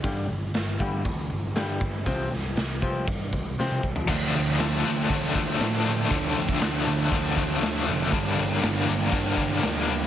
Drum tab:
CC |----------------|----------------|x-x-x-x-x-x-x-x-|x-x-x-x-x-x-x-x-|
HH |o---o---o---o---|o---o---o-------|----------------|----------------|
SD |----o-------o---|--o-o-------o---|----o-------o---|----o-------o---|
T2 |----------------|-------------o--|----------------|----------------|
FT |----------------|---------------o|----------------|----------------|
BD |o-----o-o-----o-|o-----o-o-o---o-|o-------o-o-----|o--o----o-o-----|

CC |x-x-x-x-x-x-x-x-|
HH |----------------|
SD |----o-------o---|
T2 |----------------|
FT |----------------|
BD |o-------o-o-----|